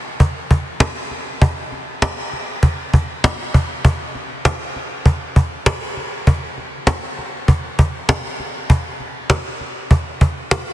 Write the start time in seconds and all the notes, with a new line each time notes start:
0.20 cajon bass
0.51 cajon bass
0.80 cajon slap
1.11 cajon slap
1.42 cajon bass
1.72 cajon slap
2.02 cajon slap
2.33 cajon slap
2.63 cajon bass
2.94 cajon bass
3.24 cajon slap
3.54 cajon bass
3.85 cajon bass
4.15 cajon slap
4.45 cajon slap
4.76 cajon slap
5.06 cajon bass
5.36 cajon bass
5.66 cajon slap
5.97 cajon slap
6.27 cajon bass
6.58 cajon slap
6.87 cajon slap
7.18 cajon slap
7.48 cajon bass
7.79 cajon bass
8.09 cajon slap
8.40 cajon slap
8.70 cajon bass
9.00 cajon slap
9.30 cajon slap
9.61 cajon slap
9.91 cajon bass
10.21 cajon bass
10.51 cajon slap